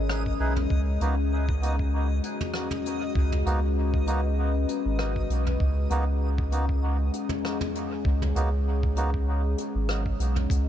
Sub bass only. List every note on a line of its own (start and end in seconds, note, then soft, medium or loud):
0.00 0.37 G#1 medium
0.40 0.67 B1 medium
0.70 0.98 C#2 medium
1.01 2.21 C#2 loud
3.15 3.43 C#2 medium
3.46 4.66 C#2 loud
4.85 5.27 G#1 medium
5.30 5.57 B1 medium
5.60 5.88 C#2 loud
5.90 7.10 C#2 loud
8.05 8.32 C#2 loud
8.35 9.55 C#2 loud
9.75 10.17 G#1 medium
10.19 10.47 B1 medium
10.50 10.69 C#2 loud